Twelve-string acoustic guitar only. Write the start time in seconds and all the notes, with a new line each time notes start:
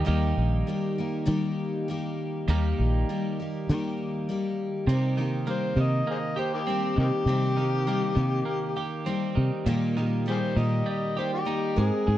0.05 D#3 G3 A#3 D#4 G4
0.67 G3 A#3 D#4 G4
0.98 A#3 D#4 G4
1.26 D#3 G3 A#3 D#4 G4
1.88 G3 A#3 D#4 G4
2.48 D#3 G3 A#3 D#4 G4
3.09 G3 A#3 D#4 G4
3.40 A#3 D#4 G4
3.69 D#3 G3 A#3 D#4 G4
4.29 G3 A#3 D#4 G4
4.89 C3 G3 A#3 D#4 G4
5.18 A#3 D#4 G4
5.47 G3 A#3 D#4 G4
5.76 A#3 D#4 G4
6.37 A#3 D#4 G4
6.67 G3 A#3 D#4 G4
7.27 C3 G3 A#3 D#4 G4
7.57 A#3 D#4 G4
7.87 G3 A#3 D#4 G4
8.17 A#3 D#4 G4
8.76 A#3 D#4 G4
9.06 G3 A#3 D#4 G4
9.66 A#2 D#3 G3 A#3 D#4 G4
9.96 G3 A#3 D#4 G4
10.26 G3 A#3 D#4 G4
10.57 G3 A#3 D#4 G4
11.17 G3 A#3 D#4 G4
11.45 G3 A#3 D#4 G4
11.76 G#3 C4 D#4 A#4